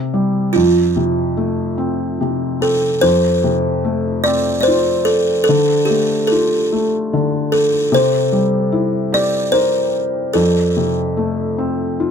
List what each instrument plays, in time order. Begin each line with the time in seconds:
Already playing: felt piano C3, kalimba C5
0.14 felt piano G3
0.53 felt piano F2, kalimba F4
0.96 felt piano C3
1.37 felt piano A3
1.78 felt piano C4
2.21 felt piano C3
2.61 felt piano C4, kalimba A4
3.01 felt piano F2, kalimba C5
3.44 felt piano C3
3.85 felt piano A3
4.24 felt piano C4, kalimba D5
4.61 kalimba C5 D5
4.68 felt piano F4
5.05 kalimba A4
5.44 kalimba A4
5.49 felt piano D3
5.85 kalimba G4
5.90 felt piano A3
6.27 kalimba A4
6.32 felt piano F4
6.72 felt piano A3
7.13 felt piano D3
7.52 kalimba A4
7.92 felt piano C3, kalimba C5
8.32 felt piano G3
8.72 felt piano E4
9.12 felt piano G4, kalimba D5
9.52 felt piano A#4, kalimba C5
10.33 felt piano F2, kalimba A4
10.77 felt piano C3
11.17 felt piano A3
11.58 felt piano C4
12.00 felt piano F4